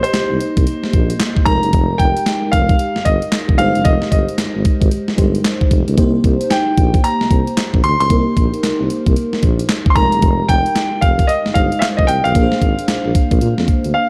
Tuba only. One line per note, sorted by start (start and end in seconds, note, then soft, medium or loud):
0.14 0.21 C2 soft
0.31 0.38 C2 medium
0.57 0.64 C2 medium
0.94 1.13 A#1 medium
1.46 1.59 F1 medium
1.64 1.71 F#1 medium
1.73 1.93 F1 medium
2.00 2.12 F1 medium
2.53 2.72 F1 medium
2.97 3.00 G1 soft
3.06 3.18 G1 medium
3.49 3.56 F1 medium
3.59 3.71 G1 medium
3.76 3.83 F#1 medium
3.85 3.98 F1 loud
4.12 4.24 G1 medium
4.39 4.46 G#1 soft
4.56 4.63 G#1 medium
4.82 4.89 G#1 medium
5.18 5.38 G1 medium
5.71 5.83 F1 medium
5.88 5.95 C#2 medium
5.98 6.17 C2 medium
6.24 6.36 C2 medium
6.78 6.97 A#1 medium
7.21 7.25 C2 soft
7.31 7.43 C2 medium
7.74 7.81 A#1 medium
7.84 7.96 D2 medium
8.00 8.08 C#2 medium
8.10 8.23 C2 loud
8.37 8.49 A#1 medium
8.63 8.70 C2 soft
8.80 8.87 C2 medium
9.07 9.14 C2 medium
9.43 9.62 A#1 medium
9.96 10.08 F1 medium
10.13 10.20 F#1 medium
10.23 10.42 F1 loud
10.49 10.61 F1 loud
11.03 11.22 F1 medium
11.46 11.50 G1 soft
11.56 11.68 G1 medium
11.99 12.06 F1 medium
12.09 12.21 C2 medium
12.26 12.33 B1 medium
12.35 12.47 A#1 medium
12.62 12.74 G#1 medium
12.89 12.95 A#1 soft
13.05 13.12 A#1 medium
13.31 13.39 A#1 loud
13.42 13.54 A#2 loud
13.58 13.65 F2 medium
13.85 13.92 D2 medium